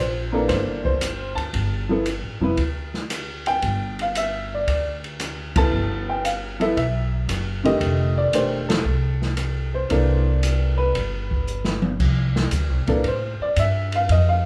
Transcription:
0.00 0.45 A#1 medium
0.00 0.30 C5 medium
0.32 0.98 E3 medium
0.32 0.98 A#3 medium
0.32 0.98 D4 medium
0.32 0.99 A4 medium
0.32 0.49 A#4 medium
0.48 1.33 G1 medium
0.48 0.83 C5 medium
0.48 kick soft
0.48 snare soft
0.48 ride medium
0.85 1.33 C5 medium
0.85 kick soft
1.01 cross-stick medium
1.01 hi-hat pedal medium
1.01 ride medium
1.35 1.52 D2 medium
1.35 1.85 A5 medium
1.35 ride soft
1.53 2.19 G1 medium
1.53 kick soft
1.53 ride medium
1.89 2.04 F3 medium
1.89 2.04 B3 medium
1.89 2.05 E4 soft
1.89 2.05 A4 medium
2.06 hi-hat pedal soft
2.06 ride medium
2.22 2.39 A1 medium
2.40 2.57 F1 medium
2.40 2.56 F3 medium
2.40 2.57 B3 medium
2.40 2.57 E4 medium
2.40 2.57 B4 medium
2.57 3.58 D2 medium
2.57 kick soft
2.57 ride soft
2.94 snare soft
3.10 cross-stick medium
3.10 hi-hat pedal medium
3.10 ride medium
3.46 3.95 G5 loud
3.46 ride soft
3.62 4.63 G1 medium
3.62 kick soft
3.62 ride medium
3.99 4.17 F5 medium
3.99 ride soft
4.15 4.50 E5 medium
4.15 hi-hat pedal medium
4.15 ride medium
4.54 4.67 D5 medium
4.67 5.68 D2 medium
4.67 5.01 D5 medium
4.67 kick soft
4.67 ride medium
5.04 ride soft
5.20 cross-stick medium
5.20 hi-hat pedal medium
5.20 ride medium
5.55 6.21 F3 medium
5.55 6.21 B3 medium
5.55 6.21 E4 medium
5.55 6.22 A4 medium
5.55 6.10 A5 loud
5.55 kick medium
5.55 ride medium
5.71 6.72 G1 medium
6.09 6.25 G5 medium
6.24 6.33 F5 medium
6.24 hi-hat pedal medium
6.24 ride medium
6.60 6.75 F3 medium
6.60 6.75 B3 medium
6.60 6.75 E4 medium
6.60 6.75 A4 medium
6.60 6.75 E5 medium
6.60 ride soft
6.76 7.25 B1 medium
6.76 7.10 E5 medium
6.76 kick soft
6.76 ride soft
7.28 7.77 F#1 medium
7.28 cross-stick medium
7.28 hi-hat pedal medium
7.28 ride medium
7.64 8.30 D3 medium
7.64 8.29 D#3 medium
7.64 8.30 A3 medium
7.64 8.31 G4 medium
7.64 8.14 D#5 medium
7.64 ride soft
7.80 8.29 F1 medium
7.80 kick soft
7.80 ride medium
8.18 8.34 D5 medium
8.32 8.81 E1 medium
8.32 8.66 D#3 medium
8.32 8.66 A3 soft
8.32 8.66 D4 soft
8.32 8.67 G4 medium
8.32 8.71 C5 medium
8.32 hi-hat pedal medium
8.32 ride medium
8.69 9.70 A4 medium
8.69 snare medium
8.69 ride medium
8.84 9.86 C2 medium
9.22 snare soft
9.37 cross-stick medium
9.37 hi-hat pedal soft
9.37 ride medium
9.74 10.39 C5 medium
9.89 10.91 C2 medium
9.89 10.94 E3 medium
9.89 10.95 A#3 medium
9.89 10.95 D4 medium
9.89 10.96 A4 medium
9.89 kick soft
9.89 ride medium
10.43 hi-hat pedal medium
10.43 ride medium
10.77 11.79 B4 medium
10.95 11.96 G1 medium
10.95 kick soft
10.95 ride medium
11.31 kick soft
11.47 hi-hat pedal soft
11.65 snare medium
11.82 mid tom medium
11.99 12.50 C2 medium
11.99 kick medium
11.99 crash medium
12.36 snare medium
12.51 12.69 D2 medium
12.51 kick soft
12.51 hi-hat pedal medium
12.51 ride medium
12.69 12.86 C2 soft
12.87 13.03 A#1 medium
12.87 13.02 E3 medium
12.87 13.03 A#3 medium
12.87 13.03 D4 medium
12.87 13.03 A4 medium
12.87 kick medium
12.87 ride soft
13.04 13.38 A2 medium
13.04 13.41 C5 medium
13.04 kick soft
13.04 ride soft
13.40 13.57 D5 medium
13.40 muted upright bass stroke soft
13.56 14.08 G2 medium
13.56 13.93 E5 medium
13.56 kick soft
13.56 hi-hat pedal soft
13.56 ride medium
13.92 14.10 F5 medium
13.92 ride soft
14.09 14.46 F2 medium
14.09 14.27 D#5 medium
14.09 kick soft
14.09 ride medium
14.29 14.45 F5 medium

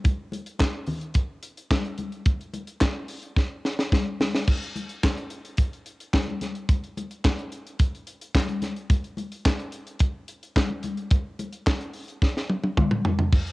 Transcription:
0.04 kick loud
0.04 closed hi-hat medium
0.04 muted conga medium
0.32 closed hi-hat medium
0.32 muted conga medium
0.46 closed hi-hat soft
0.59 kick loud
0.59 snare loud
0.59 clap loud
0.59 high conga medium
0.86 open hi-hat medium
0.86 low conga medium
1.01 closed hi-hat soft
1.14 kick loud
1.14 closed hi-hat medium
1.43 closed hi-hat medium
1.57 closed hi-hat soft
1.71 kick loud
1.71 snare loud
1.71 clap medium
1.71 high conga medium
1.85 closed hi-hat soft
1.98 closed hi-hat medium
1.98 high conga medium
2.12 closed hi-hat soft
2.26 kick loud
2.26 closed hi-hat medium
2.26 muted conga medium
2.41 closed hi-hat soft
2.54 closed hi-hat medium
2.54 muted conga medium
2.67 closed hi-hat medium
2.81 kick loud
2.81 snare loud
2.81 clap medium
2.81 high conga medium
3.08 open hi-hat medium
3.23 closed hi-hat soft
3.36 kick loud
3.36 snare medium
3.36 muted conga soft
3.65 snare medium
3.79 snare medium
3.92 kick loud
3.92 snare medium
3.92 high conga medium
4.20 snare loud
4.20 high conga medium
4.35 snare medium
4.48 kick loud
4.48 crash loud
4.48 muted conga medium
4.63 closed hi-hat soft
4.76 closed hi-hat medium
4.76 muted conga medium
4.89 closed hi-hat soft
5.03 kick loud
5.03 snare loud
5.03 clap loud
5.03 high conga medium
5.17 closed hi-hat soft
5.30 closed hi-hat medium
5.45 closed hi-hat soft
5.57 kick loud
5.57 closed hi-hat medium
5.73 closed hi-hat soft
5.86 closed hi-hat medium
6.00 closed hi-hat soft
6.14 kick loud
6.14 snare loud
6.14 clap medium
6.14 high conga medium
6.28 high conga soft
6.41 snare soft
6.41 closed hi-hat medium
6.41 high conga medium
6.55 closed hi-hat soft
6.69 kick loud
6.69 closed hi-hat medium
6.69 muted conga medium
6.84 closed hi-hat soft
6.97 closed hi-hat medium
6.97 muted conga medium
7.11 closed hi-hat medium
7.24 kick loud
7.24 snare loud
7.24 clap medium
7.24 high conga medium
7.39 closed hi-hat soft
7.52 closed hi-hat medium
7.67 closed hi-hat soft
7.79 kick loud
7.79 closed hi-hat medium
7.79 muted conga soft
7.95 closed hi-hat soft
8.07 closed hi-hat medium
8.21 closed hi-hat medium
8.35 kick loud
8.35 snare loud
8.35 clap medium
8.35 high conga medium
8.49 closed hi-hat soft
8.49 high conga medium
8.62 snare soft
8.62 closed hi-hat medium
8.62 high conga medium
8.76 closed hi-hat soft
8.90 kick loud
8.90 closed hi-hat medium
8.90 muted conga medium
9.04 closed hi-hat soft
9.17 closed hi-hat medium
9.17 muted conga medium
9.32 closed hi-hat medium
9.46 kick loud
9.46 snare loud
9.46 clap loud
9.46 high conga medium
9.60 closed hi-hat soft
9.72 closed hi-hat medium
9.87 closed hi-hat soft
10.00 kick loud
10.00 closed hi-hat medium
10.00 muted conga soft
10.28 closed hi-hat medium
10.43 closed hi-hat soft
10.56 kick loud
10.56 snare loud
10.56 clap medium
10.56 high conga medium
10.70 closed hi-hat soft
10.70 high conga medium
10.83 closed hi-hat medium
10.83 high conga medium
10.97 closed hi-hat soft
11.11 kick loud
11.11 closed hi-hat medium
11.11 muted conga medium
11.39 closed hi-hat medium
11.39 muted conga medium
11.53 closed hi-hat soft
11.67 kick loud
11.67 snare loud
11.67 clap medium
11.67 high conga medium
11.81 closed hi-hat soft
11.93 open hi-hat medium
12.08 closed hi-hat soft
12.22 kick loud
12.22 snare medium
12.22 muted conga soft
12.37 snare medium
12.49 high tom medium
12.64 high tom medium
12.77 kick loud
12.77 mid tom loud
12.77 high conga medium
12.91 mid tom medium
13.05 floor tom loud
13.05 high conga medium
13.19 floor tom medium
13.33 kick loud
13.33 crash loud
13.33 muted conga medium
13.47 closed hi-hat soft

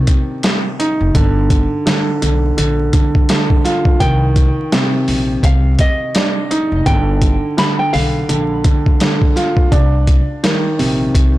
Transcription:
0.00 1.15 C3 medium
0.00 1.15 D#3 medium
0.00 1.15 D4 loud
0.07 kick loud
0.07 closed hi-hat medium
0.43 snare loud
0.43 closed hi-hat medium
0.79 1.15 D#4 medium
0.79 closed hi-hat medium
1.01 1.13 F1 medium
1.15 1.64 G1 loud
1.15 1.84 D3 loud
1.15 kick loud
1.15 closed hi-hat loud
1.50 kick medium
1.50 closed hi-hat medium
1.86 2.20 D3 medium
1.86 snare loud
1.86 closed hi-hat loud
2.22 2.53 B1 medium
2.22 2.56 D3 medium
2.22 closed hi-hat medium
2.57 2.89 A#1 medium
2.57 2.92 D3 medium
2.57 closed hi-hat loud
2.93 3.28 D3 medium
2.93 kick medium
2.93 closed hi-hat medium
3.15 kick loud
3.29 4.01 D3 medium
3.29 snare loud
3.29 closed hi-hat medium
3.50 kick medium
3.65 4.01 F4 loud
3.65 snare soft
3.65 closed hi-hat medium
3.85 kick loud
4.00 4.49 C2 loud
4.00 6.86 D#3 loud
4.00 5.39 G5 loud
4.00 kick loud
4.00 closed hi-hat loud
4.36 kick medium
4.36 closed hi-hat medium
4.72 6.86 C3 medium
4.72 snare loud
4.72 closed hi-hat loud
5.08 5.39 A#1 medium
5.08 open hi-hat medium
5.43 5.74 C2 medium
5.43 5.76 F5 medium
5.43 kick medium
5.43 closed hi-hat loud
5.79 6.33 D#5 medium
5.79 kick loud
5.79 closed hi-hat medium
6.15 6.86 D4 medium
6.15 snare loud
6.15 closed hi-hat medium
6.51 6.86 D#4 medium
6.51 closed hi-hat medium
6.72 6.84 F1 medium
6.86 7.35 G1 loud
6.86 7.56 D3 loud
6.86 7.54 G5 loud
6.86 kick loud
6.86 closed hi-hat loud
7.22 kick medium
7.22 closed hi-hat medium
7.57 7.92 D3 medium
7.57 7.77 B5 medium
7.57 snare loud
7.57 closed hi-hat medium
7.79 7.92 G5 medium
7.93 8.24 B1 medium
7.93 8.27 D3 medium
7.93 9.17 F5 medium
7.93 open hi-hat medium
8.29 8.60 A#1 medium
8.29 8.63 D3 medium
8.29 closed hi-hat loud
8.64 8.99 D3 medium
8.64 kick loud
8.64 closed hi-hat medium
8.86 kick loud
9.00 9.72 D3 medium
9.00 snare loud
9.00 closed hi-hat medium
9.22 kick loud
9.36 9.72 F4 medium
9.36 snare soft
9.36 closed hi-hat medium
9.57 kick loud
9.72 10.21 C2 loud
9.72 11.38 D4 loud
9.72 kick loud
9.72 closed hi-hat loud
10.07 kick medium
10.07 closed hi-hat medium
10.43 11.38 D#3 medium
10.43 snare loud
10.43 closed hi-hat loud
10.79 11.10 A#1 medium
10.79 11.38 C3 medium
10.79 open hi-hat medium
11.15 11.38 C2 medium
11.15 kick medium
11.15 closed hi-hat loud

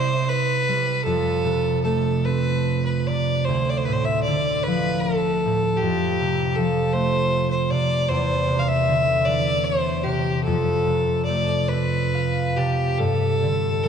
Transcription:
0.00 1.10 C3 medium
0.00 0.67 G3 soft
0.00 2.25 C4 soft
0.00 1.12 E4 medium
0.00 0.30 C5 medium
0.28 1.04 B4 medium
0.68 1.10 G3 soft
1.04 3.52 F2 medium
1.04 1.80 A4 medium
1.44 3.08 C3 soft
1.84 5.18 A3 soft
1.84 2.26 A4 medium
2.25 5.25 C4 soft
2.25 2.85 B4 medium
2.85 3.08 B4 medium
3.07 3.52 C3 soft
3.07 3.46 D5 medium
3.45 5.86 D2 soft
3.45 3.71 C5 medium
3.69 3.79 D5 medium
3.77 3.86 C5 medium
3.85 4.32 A2 soft
3.85 3.94 B4 medium
3.93 4.06 C5 medium
4.05 4.22 E5 medium
4.23 4.65 D5 medium
4.27 5.48 D3 soft
4.63 5.02 B4 medium
4.67 5.86 F3 soft
5.00 5.79 A4 medium
5.45 5.86 A2 soft
5.77 6.56 G4 medium
5.83 8.14 F2 medium
6.20 7.70 C3 soft
6.55 7.75 F3 soft
6.55 6.95 A4 medium
6.93 10.27 A3 medium
6.93 7.50 C5 medium
7.50 7.72 C5 medium
7.70 8.14 C3 soft
7.70 8.10 D5 medium
8.08 10.50 E2 medium
8.08 8.61 C5 medium
8.48 8.92 C3 soft
8.59 8.69 F5 medium
8.68 9.27 E5 medium
8.88 10.09 D3 medium
9.25 10.09 E3 medium
9.25 9.66 D5 medium
9.64 10.05 C5 medium
10.03 10.50 C3 soft
10.03 10.43 G4 medium
10.44 13.05 F2 medium
10.44 11.24 A4 medium
10.87 12.56 C3 soft
11.25 13.88 A3 soft
11.25 11.70 D5 medium
11.68 12.58 B4 medium
11.73 13.88 C4 soft
12.15 13.81 F5 soft
12.56 13.05 C3 soft
12.56 13.00 G4 medium
12.56 13.88 A5 soft
12.98 13.88 G2 medium
12.98 13.85 A4 medium
13.42 13.88 D3 soft
13.83 13.88 G3 soft
13.83 13.88 B4 medium

